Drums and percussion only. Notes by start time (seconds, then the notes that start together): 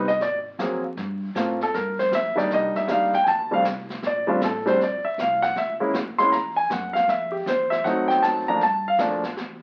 0.08 snare
0.21 brush sweep, kick, snare
0.59 kick, snare, hi-hat pedal
0.97 brush sweep, kick, snare
1.36 kick, snare, hi-hat pedal
1.61 snare
1.74 brush sweep, kick, snare
1.99 snare
2.12 kick, snare, hi-hat pedal
2.38 snare
2.50 brush sweep, kick, snare
2.75 snare
2.88 kick, snare, hi-hat pedal
3.13 snare
3.26 brush sweep, kick, snare
3.65 kick, snare, hi-hat pedal
3.90 snare
4.03 brush sweep, kick, snare
4.41 kick, snare, hi-hat pedal
4.67 snare
4.80 brush sweep, kick, snare
5.18 kick, snare, hi-hat pedal
5.42 snare
5.56 brush sweep, kick, snare
5.94 kick, snare, hi-hat pedal
6.18 snare
6.32 brush sweep, kick, snare
6.70 kick, snare, hi-hat pedal
6.95 snare
7.08 brush sweep, kick, snare
7.46 kick, snare, hi-hat pedal
7.71 snare
7.85 brush sweep, kick, snare
8.10 snare
8.23 kick, snare, hi-hat pedal
8.61 brush sweep, kick, snare
8.99 kick, snare, hi-hat pedal
9.23 snare
9.37 brush sweep, kick, snare